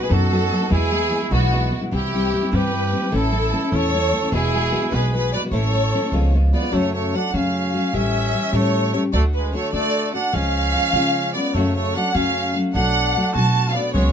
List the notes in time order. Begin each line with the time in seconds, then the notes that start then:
0.01 B3 D#4 G#4 B4
0.09 F#2 B2 F#3 B3 D#4 F#4 A4
0.31 F#3 B3 D#4 F#4
0.52 F#3 B3 D#4 F#4
0.61 B3 D#4 F#4
0.69 E2 B2 E3 G#3 B3 E4 G#4
0.91 E3 G#3 B3 E4
1.10 E3 G#3 B3 E4
1.20 E3 G#3 B3 E4
1.30 B1 E2 B2 E3 G#3 B3 E4 F#4
1.52 E3 G#3 B3 E4
1.71 E3 G#3 B3 E4
1.81 E3 G#3 B3 E4
1.91 C2 C3 E3 G3 C4 E4 G4
2.13 E3 G3 C4 E4
2.33 E3 G3 C4 E4
2.43 G3 C4 E4
2.51 G2 C3 E3 G3 C4 E4 G4 B4
2.72 E3 G3 C4 E4
2.92 E3 G3 C4 E4
3.02 G3 C4 E4
3.11 A1 A2 E3 A3 C#4 E4
3.15 E4 A4
3.32 E3 A3 C#4 E4
3.52 E3 A3 C#4 E4
3.64 A3 C#4 E4
3.72 E2 A2 E3 A3 C#4 E4 C#5
3.76 A4
3.94 E3 A3 C#4 E4
4.13 E3 A3 C#4 E4
4.23 A3 C#4 E4
4.32 E1 E2 B2 E3 G#3 B3 E4 F#4 G#4
4.53 E3 G#3 B3 F#4
4.71 E3 G#3 B3 F#4
4.82 E3 G#3 B3 F#4
4.91 B1 E2 B2 E3 G#3 B3 F#4 B4
4.95 G#4
5.14 E3 G#3 B3 F#4 G#4 B4
5.33 E3 G#3 B3 F#4 B4 D5
5.44 E3 G#3 B3 F#4
5.51 A1 A2 E3 A3 C#4 E4 A4 C#5
5.72 E3 A3 C#4 E4
5.94 E3 A3 C#4 E4
6.02 A3 E4
6.12 C#2 C#3 F3 G#3 B3 F4
6.34 F3 G#3 B3 F4
6.53 F3 G#3 B3 F4 D5
6.62 G#3 B3 F4
6.72 F#2 C#3 F#3 A3 C#4 F#4 C#5
6.95 A3 C#5
7.14 F#3 A3 C#4 D4 F#4 F#5
7.33 F#2 C#3 F#3 A3 C#4 F#4 F5
7.74 F#3 A3 C#4 F#4
7.93 A1 A2 E3 G3 C#4 G4 E5
8.34 E3 G3 C#4 G4
8.52 A2 E3 G3 A3 C#4 G4 C#5
8.92 G3 A3 C#4 G4 C#5
9.13 D2 D3 A3 D4 F#4 D5
9.34 G#3 B4
9.53 D3 A3 D4 F#4 C#5
9.73 D3 A3 D4 F#4 D5
10.14 A3 D4 F#4 F#5
10.33 C#2 C#3 F3 G#3 C#4 F4 F5
10.75 F3 G#3 C#4 F4
10.93 C#3 F3 G#3 C#4 F4
11.34 G#3 B3 C#4 F4 D5
11.54 F#2 C#3 F#3 A3 C#4 F#4 C#5
11.76 A3 C#5
11.95 F#3 A3 C#4 D4 F#4 F#5
12.13 F#2 C#3 F#3 A3 C#4 F#4 F5
12.54 F#3 A3 C#4 F#4
12.73 B1 B2 F#3 A3 D4 F#4 F#5
13.16 F#3 A3 D4 F#4
13.34 B2 F#3 A3 D4 F#4 A5
13.69 C#4 F5
13.73 B3 F#4 D5
13.77 A3 D4
13.93 C#2 C#3 F#3 G#3 B3 F#4 C#5